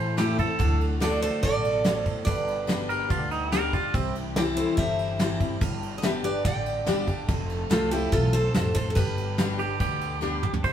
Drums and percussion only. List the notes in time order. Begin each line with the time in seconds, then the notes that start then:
0.18 snare, ride
0.39 kick, ride
0.60 kick, ride
0.81 ride
1.01 snare, ride
1.22 ride
1.43 kick, ride
1.64 ride
1.85 snare, ride
2.06 kick, ride
2.27 kick, ride
2.48 ride
2.69 snare, ride
2.90 ride
3.10 kick, ride
3.31 ride
3.52 snare, ride
3.73 kick, ride
3.94 kick, ride
4.15 ride
4.36 snare, ride
4.57 ride
4.78 kick, ride
4.99 ride
5.20 snare, ride
5.40 kick, ride
5.61 kick, ride
5.83 ride
6.03 snare, ride
6.24 ride
6.45 kick, ride
6.66 ride
6.87 snare, ride
7.08 kick, ride
7.28 kick, ride
7.49 ride
7.71 snare, ride
7.92 ride
8.13 kick, ride
8.34 ride
8.54 snare, ride
8.75 kick, ride
8.96 kick, ride
9.17 ride
9.38 snare, ride
9.59 ride
9.80 kick, ride
10.01 ride
10.22 snare
10.43 mid tom
10.53 floor tom
10.64 kick, crash